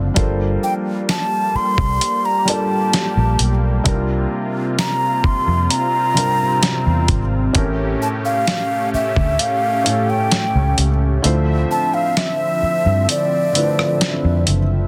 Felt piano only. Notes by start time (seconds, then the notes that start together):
Already playing: D3 A3 D4 F4 D5
0.14 G3 D4 F4 A4 A#4
0.18 C5
2.45 G3 D4 F4 A4 A#4
2.49 D5
3.84 C3 G3 D4 E4
3.88 A#4
3.93 F4
6.14 C3 G3 D4 F4
6.18 A#4
7.53 A2 A3 C#4 G4
7.57 A#4
9.84 A2 A3 C#4 G4
9.88 A4
11.22 D3 A3 E4 F4
11.26 C5
13.53 D3 A3 E4 F4
13.57 B4
13.63 C5